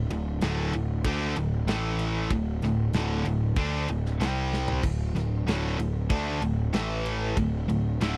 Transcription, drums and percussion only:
0, 0, Header, 1, 2, 480
1, 0, Start_track
1, 0, Tempo, 632911
1, 1747, Time_signature, 4, 2, 24, 8
1, 6197, End_track
2, 0, Start_track
2, 0, Title_t, "Drums"
2, 79, Note_on_c, 9, 51, 81
2, 155, Note_off_c, 9, 51, 0
2, 312, Note_on_c, 9, 51, 99
2, 322, Note_on_c, 9, 38, 113
2, 388, Note_off_c, 9, 51, 0
2, 397, Note_off_c, 9, 38, 0
2, 555, Note_on_c, 9, 51, 77
2, 631, Note_off_c, 9, 51, 0
2, 792, Note_on_c, 9, 36, 109
2, 793, Note_on_c, 9, 51, 116
2, 868, Note_off_c, 9, 36, 0
2, 868, Note_off_c, 9, 51, 0
2, 1033, Note_on_c, 9, 51, 82
2, 1109, Note_off_c, 9, 51, 0
2, 1273, Note_on_c, 9, 51, 102
2, 1282, Note_on_c, 9, 38, 116
2, 1349, Note_off_c, 9, 51, 0
2, 1358, Note_off_c, 9, 38, 0
2, 1509, Note_on_c, 9, 51, 80
2, 1584, Note_off_c, 9, 51, 0
2, 1747, Note_on_c, 9, 51, 96
2, 1748, Note_on_c, 9, 36, 87
2, 1823, Note_off_c, 9, 51, 0
2, 1824, Note_off_c, 9, 36, 0
2, 1988, Note_on_c, 9, 51, 69
2, 1998, Note_on_c, 9, 38, 32
2, 2064, Note_off_c, 9, 51, 0
2, 2073, Note_off_c, 9, 38, 0
2, 2225, Note_on_c, 9, 51, 95
2, 2234, Note_on_c, 9, 38, 106
2, 2301, Note_off_c, 9, 51, 0
2, 2310, Note_off_c, 9, 38, 0
2, 2468, Note_on_c, 9, 51, 76
2, 2544, Note_off_c, 9, 51, 0
2, 2701, Note_on_c, 9, 51, 100
2, 2704, Note_on_c, 9, 36, 110
2, 2776, Note_off_c, 9, 51, 0
2, 2779, Note_off_c, 9, 36, 0
2, 2945, Note_on_c, 9, 51, 69
2, 3021, Note_off_c, 9, 51, 0
2, 3078, Note_on_c, 9, 38, 34
2, 3153, Note_off_c, 9, 38, 0
2, 3191, Note_on_c, 9, 51, 97
2, 3200, Note_on_c, 9, 38, 109
2, 3267, Note_off_c, 9, 51, 0
2, 3276, Note_off_c, 9, 38, 0
2, 3438, Note_on_c, 9, 38, 64
2, 3514, Note_off_c, 9, 38, 0
2, 3550, Note_on_c, 9, 43, 102
2, 3626, Note_off_c, 9, 43, 0
2, 3666, Note_on_c, 9, 36, 102
2, 3670, Note_on_c, 9, 49, 104
2, 3742, Note_off_c, 9, 36, 0
2, 3746, Note_off_c, 9, 49, 0
2, 3913, Note_on_c, 9, 51, 74
2, 3922, Note_on_c, 9, 38, 30
2, 3989, Note_off_c, 9, 51, 0
2, 3998, Note_off_c, 9, 38, 0
2, 4156, Note_on_c, 9, 51, 102
2, 4165, Note_on_c, 9, 38, 113
2, 4232, Note_off_c, 9, 51, 0
2, 4241, Note_off_c, 9, 38, 0
2, 4394, Note_on_c, 9, 51, 85
2, 4470, Note_off_c, 9, 51, 0
2, 4627, Note_on_c, 9, 36, 114
2, 4628, Note_on_c, 9, 51, 101
2, 4703, Note_off_c, 9, 36, 0
2, 4704, Note_off_c, 9, 51, 0
2, 4869, Note_on_c, 9, 51, 82
2, 4945, Note_off_c, 9, 51, 0
2, 5108, Note_on_c, 9, 51, 110
2, 5117, Note_on_c, 9, 38, 115
2, 5184, Note_off_c, 9, 51, 0
2, 5193, Note_off_c, 9, 38, 0
2, 5351, Note_on_c, 9, 51, 81
2, 5427, Note_off_c, 9, 51, 0
2, 5589, Note_on_c, 9, 36, 93
2, 5590, Note_on_c, 9, 51, 107
2, 5665, Note_off_c, 9, 36, 0
2, 5666, Note_off_c, 9, 51, 0
2, 5835, Note_on_c, 9, 51, 74
2, 5911, Note_off_c, 9, 51, 0
2, 6075, Note_on_c, 9, 51, 101
2, 6084, Note_on_c, 9, 38, 119
2, 6151, Note_off_c, 9, 51, 0
2, 6160, Note_off_c, 9, 38, 0
2, 6197, End_track
0, 0, End_of_file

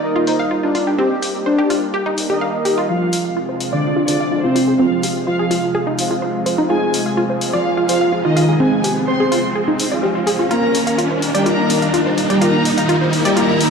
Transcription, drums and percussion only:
0, 0, Header, 1, 2, 480
1, 0, Start_track
1, 0, Tempo, 476190
1, 994, Time_signature, 4, 2, 24, 8
1, 13810, End_track
2, 0, Start_track
2, 0, Title_t, "Drums"
2, 274, Note_on_c, 9, 46, 88
2, 375, Note_off_c, 9, 46, 0
2, 755, Note_on_c, 9, 46, 78
2, 856, Note_off_c, 9, 46, 0
2, 1235, Note_on_c, 9, 46, 87
2, 1336, Note_off_c, 9, 46, 0
2, 1715, Note_on_c, 9, 46, 82
2, 1816, Note_off_c, 9, 46, 0
2, 2195, Note_on_c, 9, 46, 93
2, 2296, Note_off_c, 9, 46, 0
2, 2674, Note_on_c, 9, 46, 81
2, 2775, Note_off_c, 9, 46, 0
2, 3154, Note_on_c, 9, 46, 98
2, 3254, Note_off_c, 9, 46, 0
2, 3634, Note_on_c, 9, 46, 84
2, 3734, Note_off_c, 9, 46, 0
2, 4113, Note_on_c, 9, 46, 97
2, 4214, Note_off_c, 9, 46, 0
2, 4594, Note_on_c, 9, 46, 90
2, 4695, Note_off_c, 9, 46, 0
2, 5074, Note_on_c, 9, 46, 97
2, 5175, Note_off_c, 9, 46, 0
2, 5553, Note_on_c, 9, 46, 92
2, 5654, Note_off_c, 9, 46, 0
2, 6034, Note_on_c, 9, 46, 102
2, 6135, Note_off_c, 9, 46, 0
2, 6514, Note_on_c, 9, 46, 90
2, 6615, Note_off_c, 9, 46, 0
2, 6994, Note_on_c, 9, 46, 96
2, 7095, Note_off_c, 9, 46, 0
2, 7473, Note_on_c, 9, 46, 94
2, 7574, Note_off_c, 9, 46, 0
2, 7954, Note_on_c, 9, 46, 109
2, 8054, Note_off_c, 9, 46, 0
2, 8434, Note_on_c, 9, 46, 88
2, 8535, Note_off_c, 9, 46, 0
2, 8913, Note_on_c, 9, 46, 99
2, 9014, Note_off_c, 9, 46, 0
2, 9393, Note_on_c, 9, 46, 96
2, 9494, Note_off_c, 9, 46, 0
2, 9874, Note_on_c, 9, 46, 104
2, 9975, Note_off_c, 9, 46, 0
2, 10353, Note_on_c, 9, 46, 93
2, 10454, Note_off_c, 9, 46, 0
2, 10593, Note_on_c, 9, 42, 53
2, 10694, Note_off_c, 9, 42, 0
2, 10833, Note_on_c, 9, 46, 97
2, 10934, Note_off_c, 9, 46, 0
2, 10958, Note_on_c, 9, 42, 51
2, 11059, Note_off_c, 9, 42, 0
2, 11073, Note_on_c, 9, 42, 51
2, 11174, Note_off_c, 9, 42, 0
2, 11313, Note_on_c, 9, 46, 92
2, 11414, Note_off_c, 9, 46, 0
2, 11438, Note_on_c, 9, 42, 52
2, 11539, Note_off_c, 9, 42, 0
2, 11553, Note_on_c, 9, 42, 50
2, 11654, Note_off_c, 9, 42, 0
2, 11793, Note_on_c, 9, 46, 105
2, 11894, Note_off_c, 9, 46, 0
2, 11918, Note_on_c, 9, 42, 51
2, 12019, Note_off_c, 9, 42, 0
2, 12034, Note_on_c, 9, 42, 52
2, 12135, Note_off_c, 9, 42, 0
2, 12274, Note_on_c, 9, 46, 86
2, 12375, Note_off_c, 9, 46, 0
2, 12400, Note_on_c, 9, 42, 52
2, 12501, Note_off_c, 9, 42, 0
2, 12515, Note_on_c, 9, 42, 55
2, 12616, Note_off_c, 9, 42, 0
2, 12755, Note_on_c, 9, 46, 92
2, 12856, Note_off_c, 9, 46, 0
2, 12879, Note_on_c, 9, 42, 55
2, 12980, Note_off_c, 9, 42, 0
2, 12994, Note_on_c, 9, 42, 52
2, 13095, Note_off_c, 9, 42, 0
2, 13235, Note_on_c, 9, 46, 87
2, 13335, Note_off_c, 9, 46, 0
2, 13358, Note_on_c, 9, 42, 55
2, 13459, Note_off_c, 9, 42, 0
2, 13474, Note_on_c, 9, 42, 53
2, 13575, Note_off_c, 9, 42, 0
2, 13714, Note_on_c, 9, 46, 103
2, 13810, Note_off_c, 9, 46, 0
2, 13810, End_track
0, 0, End_of_file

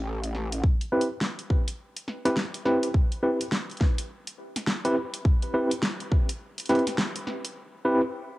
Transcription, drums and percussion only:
0, 0, Header, 1, 2, 480
1, 0, Start_track
1, 0, Tempo, 576923
1, 529, Time_signature, 4, 2, 24, 8
1, 6976, End_track
2, 0, Start_track
2, 0, Title_t, "Drums"
2, 196, Note_on_c, 9, 42, 48
2, 279, Note_off_c, 9, 42, 0
2, 289, Note_on_c, 9, 40, 37
2, 372, Note_off_c, 9, 40, 0
2, 435, Note_on_c, 9, 42, 62
2, 519, Note_off_c, 9, 42, 0
2, 529, Note_on_c, 9, 36, 115
2, 612, Note_off_c, 9, 36, 0
2, 675, Note_on_c, 9, 42, 37
2, 758, Note_off_c, 9, 42, 0
2, 842, Note_on_c, 9, 42, 64
2, 925, Note_off_c, 9, 42, 0
2, 1008, Note_on_c, 9, 38, 112
2, 1091, Note_off_c, 9, 38, 0
2, 1155, Note_on_c, 9, 42, 37
2, 1238, Note_off_c, 9, 42, 0
2, 1248, Note_on_c, 9, 36, 95
2, 1332, Note_off_c, 9, 36, 0
2, 1395, Note_on_c, 9, 42, 66
2, 1478, Note_off_c, 9, 42, 0
2, 1634, Note_on_c, 9, 42, 52
2, 1717, Note_off_c, 9, 42, 0
2, 1728, Note_on_c, 9, 40, 51
2, 1811, Note_off_c, 9, 40, 0
2, 1875, Note_on_c, 9, 40, 51
2, 1875, Note_on_c, 9, 42, 65
2, 1959, Note_off_c, 9, 40, 0
2, 1959, Note_off_c, 9, 42, 0
2, 1968, Note_on_c, 9, 38, 113
2, 2051, Note_off_c, 9, 38, 0
2, 2115, Note_on_c, 9, 42, 53
2, 2199, Note_off_c, 9, 42, 0
2, 2209, Note_on_c, 9, 40, 54
2, 2292, Note_off_c, 9, 40, 0
2, 2355, Note_on_c, 9, 42, 67
2, 2438, Note_off_c, 9, 42, 0
2, 2448, Note_on_c, 9, 36, 115
2, 2531, Note_off_c, 9, 36, 0
2, 2595, Note_on_c, 9, 42, 37
2, 2678, Note_off_c, 9, 42, 0
2, 2836, Note_on_c, 9, 42, 66
2, 2919, Note_off_c, 9, 42, 0
2, 2929, Note_on_c, 9, 38, 119
2, 3012, Note_off_c, 9, 38, 0
2, 3076, Note_on_c, 9, 42, 16
2, 3090, Note_off_c, 9, 42, 0
2, 3090, Note_on_c, 9, 42, 22
2, 3137, Note_off_c, 9, 42, 0
2, 3137, Note_on_c, 9, 42, 28
2, 3168, Note_on_c, 9, 36, 106
2, 3168, Note_on_c, 9, 38, 61
2, 3221, Note_off_c, 9, 42, 0
2, 3251, Note_off_c, 9, 36, 0
2, 3251, Note_off_c, 9, 38, 0
2, 3314, Note_on_c, 9, 42, 65
2, 3397, Note_off_c, 9, 42, 0
2, 3555, Note_on_c, 9, 42, 53
2, 3638, Note_off_c, 9, 42, 0
2, 3795, Note_on_c, 9, 40, 52
2, 3795, Note_on_c, 9, 42, 66
2, 3878, Note_off_c, 9, 40, 0
2, 3878, Note_off_c, 9, 42, 0
2, 3888, Note_on_c, 9, 38, 118
2, 3971, Note_off_c, 9, 38, 0
2, 4035, Note_on_c, 9, 42, 52
2, 4118, Note_off_c, 9, 42, 0
2, 4274, Note_on_c, 9, 42, 65
2, 4357, Note_off_c, 9, 42, 0
2, 4368, Note_on_c, 9, 36, 122
2, 4451, Note_off_c, 9, 36, 0
2, 4513, Note_on_c, 9, 42, 36
2, 4596, Note_off_c, 9, 42, 0
2, 4753, Note_on_c, 9, 42, 65
2, 4837, Note_off_c, 9, 42, 0
2, 4847, Note_on_c, 9, 38, 122
2, 4930, Note_off_c, 9, 38, 0
2, 4994, Note_on_c, 9, 42, 37
2, 5077, Note_off_c, 9, 42, 0
2, 5088, Note_on_c, 9, 36, 109
2, 5171, Note_off_c, 9, 36, 0
2, 5234, Note_on_c, 9, 42, 65
2, 5317, Note_off_c, 9, 42, 0
2, 5474, Note_on_c, 9, 42, 52
2, 5488, Note_off_c, 9, 42, 0
2, 5488, Note_on_c, 9, 42, 44
2, 5537, Note_off_c, 9, 42, 0
2, 5537, Note_on_c, 9, 42, 35
2, 5567, Note_off_c, 9, 42, 0
2, 5567, Note_on_c, 9, 40, 52
2, 5567, Note_on_c, 9, 42, 28
2, 5616, Note_off_c, 9, 42, 0
2, 5616, Note_on_c, 9, 42, 23
2, 5648, Note_off_c, 9, 42, 0
2, 5648, Note_on_c, 9, 42, 19
2, 5651, Note_off_c, 9, 40, 0
2, 5715, Note_off_c, 9, 42, 0
2, 5715, Note_on_c, 9, 40, 51
2, 5715, Note_on_c, 9, 42, 66
2, 5798, Note_off_c, 9, 40, 0
2, 5798, Note_off_c, 9, 42, 0
2, 5807, Note_on_c, 9, 38, 124
2, 5890, Note_off_c, 9, 38, 0
2, 5953, Note_on_c, 9, 42, 53
2, 6037, Note_off_c, 9, 42, 0
2, 6048, Note_on_c, 9, 40, 53
2, 6131, Note_off_c, 9, 40, 0
2, 6194, Note_on_c, 9, 42, 66
2, 6278, Note_off_c, 9, 42, 0
2, 6976, End_track
0, 0, End_of_file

